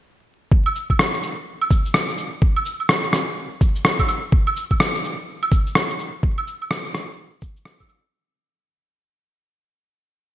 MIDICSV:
0, 0, Header, 1, 2, 480
1, 0, Start_track
1, 0, Tempo, 476190
1, 520, Time_signature, 4, 2, 24, 8
1, 10432, End_track
2, 0, Start_track
2, 0, Title_t, "Drums"
2, 520, Note_on_c, 9, 36, 112
2, 621, Note_off_c, 9, 36, 0
2, 666, Note_on_c, 9, 75, 65
2, 760, Note_on_c, 9, 82, 55
2, 767, Note_off_c, 9, 75, 0
2, 861, Note_off_c, 9, 82, 0
2, 906, Note_on_c, 9, 36, 57
2, 910, Note_on_c, 9, 75, 37
2, 1001, Note_on_c, 9, 37, 103
2, 1007, Note_off_c, 9, 36, 0
2, 1011, Note_off_c, 9, 75, 0
2, 1102, Note_off_c, 9, 37, 0
2, 1148, Note_on_c, 9, 82, 31
2, 1238, Note_off_c, 9, 82, 0
2, 1238, Note_on_c, 9, 82, 55
2, 1339, Note_off_c, 9, 82, 0
2, 1627, Note_on_c, 9, 75, 63
2, 1719, Note_on_c, 9, 36, 104
2, 1719, Note_on_c, 9, 82, 55
2, 1728, Note_off_c, 9, 75, 0
2, 1820, Note_off_c, 9, 36, 0
2, 1820, Note_off_c, 9, 82, 0
2, 1868, Note_on_c, 9, 82, 31
2, 1957, Note_on_c, 9, 37, 93
2, 1969, Note_off_c, 9, 82, 0
2, 2058, Note_off_c, 9, 37, 0
2, 2106, Note_on_c, 9, 82, 31
2, 2199, Note_off_c, 9, 82, 0
2, 2199, Note_on_c, 9, 82, 54
2, 2300, Note_off_c, 9, 82, 0
2, 2439, Note_on_c, 9, 36, 117
2, 2539, Note_off_c, 9, 36, 0
2, 2586, Note_on_c, 9, 75, 62
2, 2674, Note_on_c, 9, 82, 54
2, 2686, Note_off_c, 9, 75, 0
2, 2775, Note_off_c, 9, 82, 0
2, 2822, Note_on_c, 9, 75, 35
2, 2914, Note_on_c, 9, 37, 107
2, 2923, Note_off_c, 9, 75, 0
2, 3014, Note_off_c, 9, 37, 0
2, 3061, Note_on_c, 9, 82, 31
2, 3153, Note_off_c, 9, 82, 0
2, 3153, Note_on_c, 9, 37, 62
2, 3153, Note_on_c, 9, 82, 56
2, 3254, Note_off_c, 9, 37, 0
2, 3254, Note_off_c, 9, 82, 0
2, 3636, Note_on_c, 9, 82, 52
2, 3639, Note_on_c, 9, 36, 109
2, 3737, Note_off_c, 9, 82, 0
2, 3740, Note_off_c, 9, 36, 0
2, 3783, Note_on_c, 9, 82, 31
2, 3878, Note_on_c, 9, 37, 104
2, 3884, Note_off_c, 9, 82, 0
2, 3979, Note_off_c, 9, 37, 0
2, 4026, Note_on_c, 9, 36, 61
2, 4028, Note_on_c, 9, 75, 50
2, 4028, Note_on_c, 9, 82, 31
2, 4117, Note_off_c, 9, 75, 0
2, 4117, Note_off_c, 9, 82, 0
2, 4117, Note_on_c, 9, 75, 50
2, 4117, Note_on_c, 9, 82, 55
2, 4127, Note_off_c, 9, 36, 0
2, 4218, Note_off_c, 9, 75, 0
2, 4218, Note_off_c, 9, 82, 0
2, 4359, Note_on_c, 9, 36, 120
2, 4459, Note_off_c, 9, 36, 0
2, 4507, Note_on_c, 9, 75, 63
2, 4599, Note_on_c, 9, 82, 54
2, 4607, Note_off_c, 9, 75, 0
2, 4700, Note_off_c, 9, 82, 0
2, 4746, Note_on_c, 9, 36, 60
2, 4748, Note_on_c, 9, 75, 34
2, 4839, Note_on_c, 9, 37, 109
2, 4847, Note_off_c, 9, 36, 0
2, 4849, Note_off_c, 9, 75, 0
2, 4940, Note_off_c, 9, 37, 0
2, 4987, Note_on_c, 9, 82, 31
2, 5081, Note_off_c, 9, 82, 0
2, 5081, Note_on_c, 9, 82, 54
2, 5182, Note_off_c, 9, 82, 0
2, 5470, Note_on_c, 9, 75, 64
2, 5560, Note_on_c, 9, 36, 110
2, 5564, Note_on_c, 9, 82, 53
2, 5570, Note_off_c, 9, 75, 0
2, 5661, Note_off_c, 9, 36, 0
2, 5665, Note_off_c, 9, 82, 0
2, 5712, Note_on_c, 9, 82, 29
2, 5800, Note_on_c, 9, 37, 104
2, 5813, Note_off_c, 9, 82, 0
2, 5901, Note_off_c, 9, 37, 0
2, 5948, Note_on_c, 9, 82, 31
2, 6041, Note_off_c, 9, 82, 0
2, 6041, Note_on_c, 9, 82, 53
2, 6142, Note_off_c, 9, 82, 0
2, 6281, Note_on_c, 9, 36, 115
2, 6382, Note_off_c, 9, 36, 0
2, 6430, Note_on_c, 9, 75, 59
2, 6523, Note_on_c, 9, 82, 54
2, 6531, Note_off_c, 9, 75, 0
2, 6624, Note_off_c, 9, 82, 0
2, 6670, Note_on_c, 9, 75, 34
2, 6760, Note_on_c, 9, 37, 109
2, 6771, Note_off_c, 9, 75, 0
2, 6861, Note_off_c, 9, 37, 0
2, 6907, Note_on_c, 9, 82, 29
2, 7000, Note_off_c, 9, 82, 0
2, 7000, Note_on_c, 9, 37, 64
2, 7000, Note_on_c, 9, 82, 54
2, 7101, Note_off_c, 9, 37, 0
2, 7101, Note_off_c, 9, 82, 0
2, 7475, Note_on_c, 9, 82, 53
2, 7480, Note_on_c, 9, 36, 106
2, 7576, Note_off_c, 9, 82, 0
2, 7581, Note_off_c, 9, 36, 0
2, 7624, Note_on_c, 9, 82, 30
2, 7716, Note_on_c, 9, 37, 104
2, 7725, Note_off_c, 9, 82, 0
2, 7817, Note_off_c, 9, 37, 0
2, 7866, Note_on_c, 9, 36, 60
2, 7866, Note_on_c, 9, 75, 48
2, 7866, Note_on_c, 9, 82, 31
2, 7954, Note_off_c, 9, 75, 0
2, 7954, Note_off_c, 9, 82, 0
2, 7954, Note_on_c, 9, 75, 49
2, 7954, Note_on_c, 9, 82, 51
2, 7967, Note_off_c, 9, 36, 0
2, 8055, Note_off_c, 9, 75, 0
2, 8055, Note_off_c, 9, 82, 0
2, 10432, End_track
0, 0, End_of_file